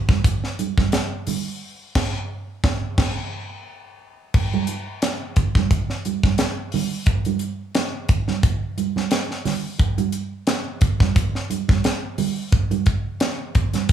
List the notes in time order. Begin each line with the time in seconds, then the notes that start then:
0.09 kick, snare, high conga
0.24 kick, closed hi-hat, low conga
0.44 snare
0.59 closed hi-hat, muted conga, high conga
0.78 kick, snare, high conga
0.92 snare, closed hi-hat
1.27 open hi-hat, high conga, low conga
1.95 kick, snare, crash
2.64 kick, snare
2.98 kick, snare, crash
4.34 kick, crash, muted conga
4.54 high conga
4.67 closed hi-hat, muted conga
5.02 snare, closed hi-hat, muted conga
5.36 kick, closed hi-hat, low conga
5.55 kick, snare, high conga
5.71 kick, closed hi-hat, muted conga, low conga
5.90 snare
6.05 closed hi-hat, muted conga, high conga
6.23 kick, snare, high conga
6.38 snare, closed hi-hat
6.72 open hi-hat, muted conga, high conga, low conga
7.06 kick, closed hi-hat
7.25 closed hi-hat, high conga
7.39 closed hi-hat
7.75 snare, closed hi-hat, muted conga
8.09 kick, closed hi-hat, muted conga, low conga
8.28 snare, high conga
8.43 kick, closed hi-hat, muted conga, low conga
8.78 closed hi-hat, muted conga, high conga
8.96 snare, high conga
9.11 snare, closed hi-hat
9.31 snare
9.45 snare, open hi-hat, high conga, low conga
9.79 kick, closed hi-hat, muted conga
9.98 closed hi-hat, high conga
10.12 closed hi-hat
10.47 snare, closed hi-hat, muted conga
10.81 kick, closed hi-hat, low conga
11.00 kick, snare, high conga
11.15 kick, closed hi-hat, muted conga, low conga
11.35 snare
11.50 closed hi-hat, high conga
11.68 kick, snare, high conga
11.84 snare, closed hi-hat
12.18 open hi-hat, muted conga, high conga, low conga
12.52 kick, closed hi-hat, muted conga
12.71 closed hi-hat, high conga
12.86 kick, closed hi-hat, muted conga
13.20 snare, closed hi-hat
13.55 kick, closed hi-hat, low conga
13.74 snare, closed hi-hat, high conga
13.89 kick, closed hi-hat, low conga